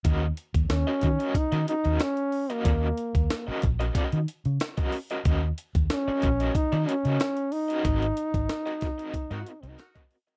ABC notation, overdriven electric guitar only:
X:1
M:4/4
L:1/16
Q:1/4=92
K:Ebdor
V:1 name="Overdriven electric guitar"
[DGBe] z4 [DGBe] z [DGBe] z [DGBe] z [DGBe] z3 [DGBe] | [DGBe] z4 [DGBe] z [DGBe] [DGBe] z4 [DGBe] z [DGBe] | [DGBe] z4 [DGBe] z [DGBe] z [DGBe] z [DGBe] z3 [DGBe] | [CGBe] z4 [CGBe] z [CGBe] z [CGBe] z [CGBe] z [CGBe] z [CGBe] |]